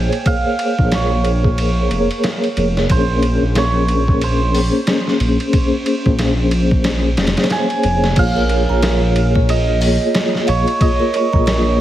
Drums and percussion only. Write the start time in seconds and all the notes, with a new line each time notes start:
0.13 ride
0.26 kick, ride
0.59 ride
0.79 kick
0.92 snare, ride
1.25 ride
1.44 kick
1.58 ride
1.91 ride
2.11 ride
2.24 snare, ride
2.44 ride
2.57 ride
2.77 snare
2.90 kick, ride
3.23 ride
3.55 snare, ride
3.88 ride
4.08 kick
4.21 ride
4.55 open hi-hat
4.87 snare, ride
5.08 snare
5.20 ride
5.40 ride
5.53 kick, ride
5.86 ride
6.06 kick
6.19 snare, ride
6.51 ride
6.71 kick
6.84 snare, ride
7.17 snare, ride
7.27 snare, ride
7.37 snare, ride
7.43 snare, ride
7.50 snare, ride
7.70 ride
7.83 ride
8.04 snare
8.16 kick, crash, ride
8.49 ride
8.83 snare, ride
9.16 ride
9.35 kick
9.49 ride
9.81 open hi-hat
10.15 snare, ride
10.35 snare
10.48 ride
10.68 ride
10.81 kick, ride
11.14 ride
11.33 kick
11.47 snare, ride